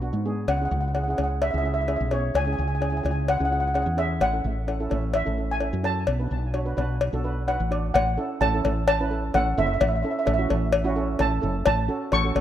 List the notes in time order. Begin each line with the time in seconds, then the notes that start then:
Already playing: B1
0.02 B3 D4 F#4
0.13 G#2
0.25 B3 D4 G#4
0.48 C#2 F#5, cowbell
0.57 F#5
0.61 C#4 E4 G#4 F#5
0.71 C#2 F#5
0.80 F#5
0.88 F#5
0.94 C#4 E4 G#4 F#5, cowbell
1.04 F#5
1.08 C#4 E4 G#4 F#5
1.16 C#2 C#4 E4 G#4 F#5, cowbell
1.24 F#5
1.42 E5, cowbell
1.51 C#2 C#4 E4 G#4 E5
1.58 E5
1.63 C#4 E4 G#4 E5
1.74 E5
1.81 E5
1.87 C#4 E4 G#4 E5, cowbell
1.96 E5
2.00 B1
2.11 C#4 E4 G#4 C#5, cowbell
2.34 C#2 G#5, cowbell
2.45 C#4 E4 G#4 G#5
2.53 G#5
2.58 C#2 G#5
2.68 G#5
2.75 G#5
2.80 C#4 E4 G#4 G#5, cowbell
2.90 C#4 E4 G#4 G#5
2.97 G#5
3.03 C#2 C#4 E4 G#4 G#5, cowbell
3.11 G#5
3.28 F#5, cowbell
3.37 C#2 C#4 E4 G#4 F#5
3.45 F#5
3.51 C#4 E4 G#4 F#5
3.60 F#5
3.67 F#5
3.74 C#4 E4 G#4 F#5, cowbell
3.82 E2 F#5
3.97 C#4 E4 G#4 E5, cowbell
4.20 A1 F#5, cowbell
4.33 C#4 E4 A4
4.44 A1
4.67 C#4 E4 A4, cowbell
4.80 C#4 E4 A4
4.90 A1 C#4 E4 A4, cowbell
5.14 E5, cowbell
5.25 A1 C#4 E4 A4
5.37 C#4 E4 A4
5.51 G#5
5.60 C#4 E4 A4, cowbell
5.73 F#2
5.83 C#4 E4 A4 A5, cowbell
6.07 B1, cowbell
6.19 D4 F#4 B4
6.31 B1
6.54 D4 F#4 C#5, cowbell
6.65 D4 F#4 B4
6.76 B1 D4 F#4 B4, cowbell
7.01 cowbell
7.13 B1 D4 F#4 A4
7.24 D4 F#4 B4
7.47 D4 F#4 B4 F#5, cowbell
7.60 A1
7.71 D4 F#4 D5, cowbell
7.94 A1 F#5, cowbell
8.17 C#4 E4 A4
8.40 A1 C#4 E4 A4 A5, cowbell
8.54 C#4 E4 A4
8.64 A1 C#4 E4 A4, cowbell
8.88 A5, cowbell
9.00 C#4 E4 B4
9.11 C#4 E4 A4
9.34 A1 C#4 E4 A4 F#5, cowbell
9.57 F#1 C#4 E4 A4 E5
9.66 E5
9.74 E5
9.80 A1 E5, cowbell
9.89 E5
9.96 E5
10.03 C#4 E4 A4 E5
10.11 E5
10.19 E5
10.25 A1 C#4 E4 A4 E5, cowbell
10.34 E5
10.38 C#4 E4 F#4
10.49 A1 C#4 E4 A4, cowbell
10.73 cowbell
10.84 C#4 E4 F#4
10.95 C#4 E4 A4
11.19 A1 C#4 E4 A4 A5, cowbell
11.41 F#1 C#4 E4 A4
11.66 A1 A5, cowbell
11.88 C#4 F#4 A4
12.11 A1 C#4 F#4 A4 C#6, cowbell
12.24 C#4 F#4 A4
12.35 A1 C#4 F#4 A4, cowbell